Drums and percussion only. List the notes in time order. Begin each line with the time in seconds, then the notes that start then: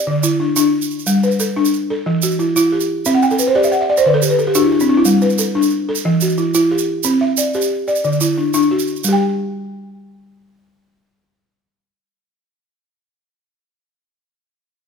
0.23 shaker
0.56 shaker
0.82 shaker
0.91 shaker
0.99 shaker
1.07 shaker
1.23 shaker
1.31 shaker
1.40 shaker
1.65 shaker
1.73 shaker
2.22 shaker
2.31 shaker
2.39 shaker
2.56 shaker
2.80 shaker
3.05 shaker
3.22 shaker
3.31 shaker
3.39 shaker
3.63 shaker
3.72 shaker
3.97 shaker
4.22 shaker
4.39 shaker
4.55 shaker
4.80 shaker
5.05 shaker
5.22 shaker
5.30 shaker
5.38 shaker
5.62 shaker
5.70 shaker
5.95 shaker
6.21 shaker
6.29 shaker
6.38 shaker
6.54 shaker
6.78 shaker
7.03 shaker
7.37 shaker
7.54 shaker
7.61 shaker
7.88 shaker
7.95 shaker
8.04 shaker
8.12 shaker
8.21 shaker
8.54 shaker
8.62 shaker
8.79 shaker
8.87 shaker
8.96 shaker
9.04 shaker